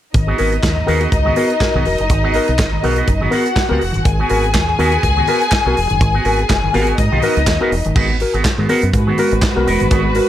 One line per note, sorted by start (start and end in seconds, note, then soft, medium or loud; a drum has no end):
0.14 0.32 G#1 loud
0.14 0.29 G#2 medium
0.14 0.29 D#3 medium
0.14 3.28 D#4 medium
0.14 3.28 D#5 medium
0.14 muted clean electric guitar stroke soft
0.14 kick loud
0.14 closed hi-hat medium
0.27 0.37 B3 medium
0.27 0.37 F#4 medium
0.27 0.38 G#4 medium
0.38 0.57 G#1 loud
0.38 0.56 B3 medium
0.38 0.53 F#4 medium
0.38 0.51 F#4 medium
0.38 0.50 G#4 medium
0.38 0.53 A#4 medium
0.38 open hi-hat medium
0.52 muted clean electric guitar stroke soft
0.52 closed hi-hat soft
0.63 0.81 D#2 medium
0.63 0.69 F#4 soft
0.63 0.69 A#4 soft
0.63 muted clean electric guitar stroke soft
0.63 kick loud
0.63 snare loud
0.63 clap medium
0.63 closed hi-hat medium
0.76 0.89 G#2 soft
0.76 0.89 D#3 soft
0.76 muted clean electric guitar stroke soft
0.87 1.06 D#2 medium
0.87 1.02 B3 medium
0.87 1.00 B3 medium
0.87 1.02 F#4 medium
0.87 1.00 F#4 medium
0.87 0.99 G#4 loud
0.87 1.02 A#4 medium
0.87 open hi-hat medium
1.00 1.10 B3 soft
1.00 1.11 F#4 medium
1.00 1.11 G#4 medium
1.00 closed hi-hat soft
1.11 1.30 C#2 medium
1.11 1.18 F#4 soft
1.11 1.18 A#4 soft
1.11 muted clean electric guitar stroke soft
1.11 kick medium
1.11 closed hi-hat medium
1.25 1.37 G#2 medium
1.25 1.37 D#3 medium
1.25 1.35 B3 medium
1.25 1.36 F#4 medium
1.25 1.36 G#4 medium
1.36 1.54 B3 medium
1.36 1.51 B3 medium
1.36 1.50 F#4 medium
1.36 1.51 F#4 medium
1.36 1.48 G#4 medium
1.36 1.51 A#4 medium
1.36 open hi-hat medium
1.50 muted clean electric guitar stroke soft
1.50 closed hi-hat soft
1.60 1.75 F#4 medium
1.60 1.76 A#4 medium
1.60 muted clean electric guitar stroke soft
1.60 kick loud
1.60 snare medium
1.60 clap medium
1.60 closed hi-hat medium
1.74 1.83 B1 medium
1.74 1.86 G#2 medium
1.74 1.87 D#3 medium
1.74 1.84 B3 medium
1.74 1.85 F#4 medium
1.74 1.85 G#4 medium
1.85 1.96 E1 medium
1.85 2.00 F#4 soft
1.85 2.00 A#4 medium
1.85 muted clean electric guitar stroke soft
1.85 open hi-hat medium
1.98 2.10 F#1 medium
1.98 muted clean electric guitar stroke soft
1.98 closed hi-hat soft
2.10 2.37 G#1 medium
2.10 2.25 G#2 medium
2.10 2.25 D#3 medium
2.10 muted clean electric guitar stroke soft
2.10 kick loud
2.10 closed hi-hat medium
2.23 2.33 B3 medium
2.23 2.33 F#4 medium
2.23 2.34 G#4 medium
2.34 2.52 B3 medium
2.34 2.47 F#4 medium
2.34 2.49 F#4 medium
2.34 2.46 G#4 medium
2.34 2.49 A#4 medium
2.34 open hi-hat medium
2.48 2.56 B1 medium
2.48 muted clean electric guitar stroke soft
2.48 closed hi-hat soft
2.58 2.77 G#1 medium
2.58 2.65 F#4 soft
2.58 2.65 A#4 soft
2.58 muted clean electric guitar stroke soft
2.58 kick loud
2.58 snare loud
2.58 clap medium
2.58 closed hi-hat medium
2.73 2.84 G#2 medium
2.73 2.84 D#3 medium
2.73 muted clean electric guitar stroke soft
2.83 3.01 B1 medium
2.83 2.98 B3 medium
2.83 2.97 B3 medium
2.83 2.98 F#4 medium
2.83 2.97 F#4 medium
2.83 2.96 G#4 medium
2.83 2.98 A#4 medium
2.83 open hi-hat medium
2.96 3.08 B3 soft
2.96 3.08 F#4 medium
2.96 3.09 G#4 medium
2.96 closed hi-hat soft
3.07 3.26 F#1 loud
3.07 3.13 F#4 soft
3.07 3.13 A#4 soft
3.07 muted clean electric guitar stroke soft
3.07 kick medium
3.07 closed hi-hat medium
3.21 3.33 G#2 medium
3.21 3.33 D#3 medium
3.21 3.31 B3 medium
3.21 3.32 F#4 medium
3.21 3.32 G#4 medium
3.31 3.46 B3 medium
3.31 3.50 B3 medium
3.31 3.46 F#4 medium
3.31 4.04 F#4 medium
3.31 3.45 F#4 medium
3.31 3.45 G#4 medium
3.31 3.46 A#4 medium
3.31 4.04 F#5 medium
3.31 open hi-hat medium
3.46 muted clean electric guitar stroke medium
3.46 closed hi-hat soft
3.56 muted clean electric guitar stroke soft
3.56 kick loud
3.56 snare loud
3.56 clap medium
3.56 closed hi-hat medium
3.69 3.78 C#2 medium
3.69 3.81 B3 medium
3.69 3.81 F#4 medium
3.69 3.82 G#4 medium
3.69 3.81 A#4 medium
3.81 3.91 E1 medium
3.81 muted clean electric guitar stroke soft
3.81 open hi-hat medium
3.93 4.03 F#1 medium
3.93 4.03 G#2 medium
3.93 4.03 D#3 medium
3.93 muted clean electric guitar stroke soft
3.93 closed hi-hat soft
4.04 4.23 G#1 medium
4.04 4.19 G#2 medium
4.04 4.19 D#3 medium
4.04 6.94 G#4 medium
4.04 6.94 G#5 loud
4.04 muted clean electric guitar stroke soft
4.04 kick loud
4.04 closed hi-hat medium
4.19 4.29 B3 medium
4.19 4.29 F#4 medium
4.19 4.30 G#4 medium
4.30 4.56 G#1 medium
4.30 4.48 B3 medium
4.30 4.44 F#4 medium
4.30 4.43 F#4 medium
4.30 4.42 G#4 medium
4.30 4.44 A#4 medium
4.30 open hi-hat medium
4.44 muted clean electric guitar stroke soft
4.44 closed hi-hat soft
4.54 4.72 D#2 medium
4.54 4.60 F#4 soft
4.54 4.60 A#4 soft
4.54 muted clean electric guitar stroke soft
4.54 kick loud
4.54 snare loud
4.54 clap medium
4.54 closed hi-hat medium
4.67 4.79 G#2 soft
4.67 4.79 D#3 soft
4.67 muted clean electric guitar stroke soft
4.78 4.96 D#2 medium
4.78 4.93 B3 medium
4.78 4.92 B3 medium
4.78 4.93 F#4 medium
4.78 4.92 F#4 loud
4.78 4.91 G#4 loud
4.78 4.93 A#4 medium
4.78 open hi-hat medium
4.92 5.02 B3 soft
4.92 5.02 F#4 medium
4.92 5.03 G#4 medium
4.92 closed hi-hat soft
5.03 5.21 C#2 loud
5.03 5.09 F#4 soft
5.03 5.09 A#4 soft
5.03 muted clean electric guitar stroke soft
5.03 kick medium
5.03 closed hi-hat medium
5.17 5.29 G#2 medium
5.17 5.29 D#3 medium
5.17 5.27 B3 medium
5.17 5.27 F#4 medium
5.17 5.28 G#4 medium
5.28 5.46 B3 medium
5.28 5.42 B3 medium
5.28 5.41 F#4 medium
5.28 5.42 F#4 medium
5.28 5.40 G#4 medium
5.28 5.42 A#4 medium
5.28 open hi-hat medium
5.41 muted clean electric guitar stroke soft
5.41 closed hi-hat soft
5.51 muted clean electric guitar stroke soft
5.51 kick loud
5.51 snare loud
5.51 clap loud
5.51 clap medium
5.51 closed hi-hat medium
5.65 5.74 B1 medium
5.65 5.75 B3 medium
5.65 5.78 B3 medium
5.65 5.75 F#4 medium
5.65 5.78 F#4 medium
5.65 5.76 G#4 medium
5.65 5.78 A#4 medium
5.76 5.86 E1 medium
5.76 muted clean electric guitar stroke soft
5.76 open hi-hat medium
5.90 6.01 F#1 medium
5.90 6.00 G#2 medium
5.90 6.00 D#3 medium
5.90 muted clean electric guitar stroke soft
5.90 closed hi-hat soft
6.01 6.19 G#1 medium
6.01 6.16 G#2 medium
6.01 6.15 D#3 medium
6.01 muted clean electric guitar stroke soft
6.01 kick loud
6.01 closed hi-hat medium
6.14 6.24 B3 medium
6.14 6.24 F#4 medium
6.14 6.24 G#4 medium
6.25 6.43 G#1 medium
6.25 6.43 B3 medium
6.25 6.37 F#4 medium
6.25 6.40 F#4 medium
6.25 6.37 G#4 medium
6.25 6.40 A#4 medium
6.25 open hi-hat medium
6.38 muted clean electric guitar stroke medium
6.38 closed hi-hat soft
6.49 6.67 F#1 medium
6.49 6.55 F#4 soft
6.49 6.55 A#4 soft
6.49 muted clean electric guitar stroke soft
6.49 kick loud
6.49 snare loud
6.49 clap loud
6.49 clap medium
6.49 closed hi-hat medium
6.63 6.75 G#2 medium
6.63 6.75 D#3 medium
6.63 muted clean electric guitar stroke soft
6.73 6.92 G#1 medium
6.73 6.87 B3 medium
6.73 6.88 B3 medium
6.73 6.87 F#4 medium
6.73 6.88 F#4 medium
6.73 6.86 G#4 loud
6.73 6.89 A#4 medium
6.73 open hi-hat medium
6.87 6.97 B3 medium
6.87 6.97 F#4 soft
6.87 6.98 G#4 medium
6.87 closed hi-hat soft
6.98 7.08 G#2 medium
6.98 7.94 D#4 medium
6.98 7.04 F#4 soft
6.98 7.04 A#4 soft
6.98 7.94 D#5 medium
6.98 kick medium
6.98 closed hi-hat medium
7.12 7.20 B1 medium
7.12 7.24 G#2 medium
7.12 7.24 D#3 medium
7.12 7.21 B3 medium
7.12 7.22 F#4 medium
7.12 7.22 G#4 medium
7.22 7.37 B3 medium
7.22 7.41 B3 medium
7.22 7.37 F#4 medium
7.22 7.36 F#4 medium
7.22 7.35 G#4 medium
7.22 7.37 A#4 medium
7.22 open hi-hat medium
7.37 7.44 C#2 medium
7.37 muted clean electric guitar stroke soft
7.37 closed hi-hat soft
7.47 7.57 D#2 loud
7.47 muted clean electric guitar stroke medium
7.47 kick loud
7.47 snare loud
7.47 clap medium
7.47 closed hi-hat medium
7.61 7.72 B3 medium
7.61 7.70 B3 medium
7.61 7.73 F#4 medium
7.61 7.71 F#4 medium
7.61 7.71 G#4 medium
7.61 7.73 A#4 medium
7.71 7.82 E1 medium
7.71 muted clean electric guitar stroke soft
7.71 open hi-hat medium
7.85 7.93 F#1 medium
7.85 7.95 G#2 medium
7.85 7.95 D#3 medium
7.85 muted clean electric guitar stroke soft
7.85 closed hi-hat soft
7.95 8.23 G#1 medium
7.95 8.11 G#2 medium
7.95 8.11 D#3 medium
7.95 8.16 B3 medium
7.95 8.09 F#4 medium
7.95 8.08 G#4 medium
7.95 kick loud
7.95 crash medium
8.09 muted clean electric guitar stroke soft
8.20 8.35 F#4 medium
8.20 8.35 A#4 medium
8.20 muted clean electric guitar stroke soft
8.20 open hi-hat medium
8.34 8.42 G#1 medium
8.34 8.43 B3 medium
8.34 8.44 F#4 medium
8.34 8.44 G#4 medium
8.34 closed hi-hat soft
8.44 8.50 F#4 soft
8.44 8.50 A#4 soft
8.44 muted clean electric guitar stroke soft
8.44 kick loud
8.44 snare loud
8.44 clap medium
8.44 clap loud
8.44 closed hi-hat medium
8.58 8.66 G#2 medium
8.58 8.70 G#2 medium
8.58 8.70 D#3 medium
8.58 8.68 B3 soft
8.58 8.68 F#4 soft
8.58 8.69 G#4 medium
8.69 8.89 B3 medium
8.69 8.84 B3 medium
8.69 8.82 F#4 loud
8.69 8.84 F#4 medium
8.69 8.81 G#4 loud
8.69 8.84 A#4 medium
8.69 open hi-hat medium
8.82 8.91 F#2 medium
8.82 muted clean electric guitar stroke soft
8.82 closed hi-hat soft
8.93 9.11 G#2 loud
8.93 10.29 G#3 medium
8.93 10.29 F#4 medium
8.93 8.99 F#4 soft
8.93 8.99 A#4 soft
8.93 10.29 B4 medium
8.93 muted clean electric guitar stroke soft
8.93 kick loud
8.93 closed hi-hat medium
9.07 9.19 G#2 medium
9.07 9.19 D#3 medium
9.07 9.17 B3 medium
9.07 9.18 F#4 medium
9.07 9.19 G#4 medium
9.18 9.33 B3 medium
9.18 9.36 B3 medium
9.18 9.33 F#4 medium
9.18 9.31 F#4 medium
9.18 9.33 A#4 medium
9.18 9.31 A#4 medium
9.18 open hi-hat medium
9.31 9.40 G#1 medium
9.31 muted clean electric guitar stroke soft
9.31 closed hi-hat soft
9.42 kick loud
9.42 snare loud
9.42 clap loud
9.42 clap medium
9.42 closed hi-hat medium
9.56 9.64 B1 medium
9.56 9.68 B3 medium
9.56 9.68 F#4 medium
9.56 9.68 A#4 medium
9.56 muted clean electric guitar stroke soft
9.66 9.77 E1 medium
9.66 9.87 B3 medium
9.66 9.80 F#4 medium
9.66 9.80 A#4 medium
9.66 open hi-hat medium
9.80 9.89 F#1 medium
9.80 9.90 G#2 medium
9.80 9.90 D#3 medium
9.80 muted clean electric guitar stroke medium
9.80 closed hi-hat soft
9.91 10.19 G#1 medium
9.91 10.06 G#2 medium
9.91 10.06 D#3 medium
9.91 10.11 B3 medium
9.91 10.04 F#4 medium
9.91 10.04 G#4 medium
9.91 kick loud
9.91 closed hi-hat medium
10.05 muted clean electric guitar stroke medium
10.15 10.29 F#4 medium
10.15 10.29 A#4 medium
10.15 muted clean electric guitar stroke soft
10.15 open hi-hat medium